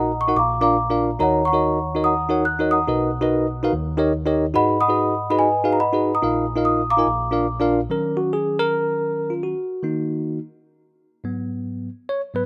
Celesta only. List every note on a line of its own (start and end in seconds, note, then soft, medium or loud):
0.00 0.33 D#5 medium
0.00 0.33 F#5 medium
0.00 0.21 A#5 loud
0.21 0.37 C#6 medium
0.37 0.62 F5 medium
0.37 0.62 A#5 medium
0.37 0.60 D6 loud
0.61 1.17 F5 medium
0.61 1.17 A#5 medium
0.61 1.01 D6 medium
1.20 2.01 C#5 medium
1.20 1.46 F#5 medium
1.20 1.46 A#5 loud
1.45 2.04 F#5 medium
1.45 2.04 A#5 medium
1.45 2.06 C#6 medium
2.04 2.71 F#5 medium
2.04 2.71 A#5 medium
2.04 2.47 D#6 loud
2.45 2.72 F#6 loud
2.71 3.94 F#5 medium
2.71 3.94 A#5 medium
2.71 3.93 D#6 loud
4.56 5.35 D#5 medium
4.56 4.80 F#5 medium
4.56 4.80 B5 loud
4.81 5.61 F#5 medium
4.81 5.29 B5 medium
4.81 5.27 D#6 loud
5.31 5.39 B5 medium
5.38 6.19 B4 medium
5.38 5.79 D#5 medium
5.38 5.70 G#5 loud
5.73 5.81 A#5 medium
5.80 6.20 D#5 medium
5.80 6.20 F#5 medium
5.80 6.15 B5 loud
6.15 6.90 A#5 medium
6.15 6.61 D#6 medium
6.65 6.91 D#6 medium
6.90 7.70 F5 medium
6.90 7.70 A#5 medium
6.90 7.70 D6 medium